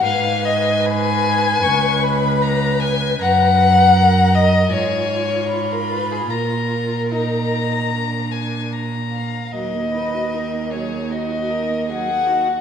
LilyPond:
<<
  \new Staff \with { instrumentName = "Violin" } { \time 4/4 \key ees \minor \tempo 4 = 76 aes''4 ces'''4 des'''8 ces'''8 bes''8 aes''8 | bes''8 bes''4. aes''4 ces'''4 | bes''4 bes''4. aes''8 bes''4 | bes'8 ces''8 bes'8 aes'8 ges'8 bes'8 aes'8 ges'8 | }
  \new Staff \with { instrumentName = "Violin" } { \time 4/4 \key ees \minor f''8 ees''8 aes''2 r4 | ges''4. ees''8 des''4~ des''16 bes'16 ces''16 aes'16 | bes'2. r8 f''8 | ees''4. des''8 ees''4 ges''4 | }
  \new Staff \with { instrumentName = "Viola" } { \time 4/4 \key ees \minor ces''1~ | ces''4 bes'4 f'2~ | f'4 ees'4 d'4.~ d'16 r16 | ges16 bes16 ees'16 ges'16 ees'16 bes16 ges16 bes16 ees'16 ges'16 ees'16 bes16 ges16 bes16 ees'16 ges'16 | }
  \new Staff \with { instrumentName = "Cello" } { \clef bass \time 4/4 \key ees \minor aes,2 des,2 | ges,2 aes,2 | bes,2.~ bes,8. r16 | ees,1 | }
>>